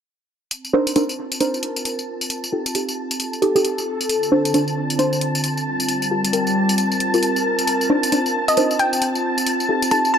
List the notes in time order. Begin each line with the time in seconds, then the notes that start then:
0.51 C4 A5, closed hi-hat, tambourine
0.65 tambourine
0.73 D4 D#4 A#4 C5
0.87 closed hi-hat, tambourine
0.95 D4 D#4 F4 A#4 C5, closed hi-hat, tambourine
1.09 tambourine
1.32 A#4, closed hi-hat, tambourine
1.40 D4 D#4 A#4 C5, closed hi-hat, tambourine
1.54 tambourine
1.63 closed hi-hat
1.76 tambourine
1.85 closed hi-hat, tambourine
1.99 tambourine
2.21 tambourine
2.30 closed hi-hat, tambourine
2.44 tambourine
2.52 D#4 F4 G4 A4
2.66 closed hi-hat, tambourine
2.75 D#4 F4 G4 A4, closed hi-hat, tambourine
2.88 tambourine
3.11 A4, closed hi-hat, tambourine
3.20 closed hi-hat, tambourine
3.33 tambourine
3.42 D#4 F4 G4 A4, closed hi-hat
3.55 D#4 F4 G4 A4, tambourine
3.65 closed hi-hat, tambourine
3.78 tambourine
4.01 tambourine
4.09 D3, closed hi-hat, tambourine
4.23 tambourine
4.32 D4 F4 C5
4.45 closed hi-hat, tambourine
4.54 D4 F4 C5, closed hi-hat, tambourine
4.68 tambourine
4.90 closed hi-hat, tambourine
4.99 D4 F4 C5, closed hi-hat, tambourine
5.13 tambourine
5.21 closed hi-hat
5.35 tambourine
5.44 closed hi-hat, tambourine
5.57 tambourine
5.66 G3
5.80 tambourine
5.88 closed hi-hat, tambourine
6.02 tambourine
6.11 F4 G4 A#4
6.25 closed hi-hat, tambourine
6.33 F4 G4 A#4, closed hi-hat, tambourine
6.47 tambourine
6.57 A#4
6.69 closed hi-hat, tambourine
6.78 closed hi-hat, tambourine
6.92 tambourine
7.00 closed hi-hat
7.14 F4 G4 A#4, tambourine
7.23 closed hi-hat, tambourine
7.36 tambourine
7.59 closed hi-hat, tambourine
7.67 closed hi-hat, tambourine
7.81 tambourine
7.90 D4 D#4 A#4 C5
8.03 closed hi-hat, tambourine
8.12 D4 D#4 A#4 C5, closed hi-hat, tambourine
8.26 tambourine
8.48 D#5, closed hi-hat, tambourine
8.57 D4 D#4 A#4 C5, closed hi-hat, tambourine
8.71 tambourine
8.79 G5, closed hi-hat
8.93 tambourine
9.02 closed hi-hat, tambourine
9.15 tambourine
9.38 tambourine
9.46 closed hi-hat, tambourine
9.60 tambourine
9.69 D#4 F4 G4 A4
9.82 A4, closed hi-hat, tambourine
9.91 D#4 F4 G4 A4 A5, closed hi-hat, tambourine
10.05 tambourine
10.14 A5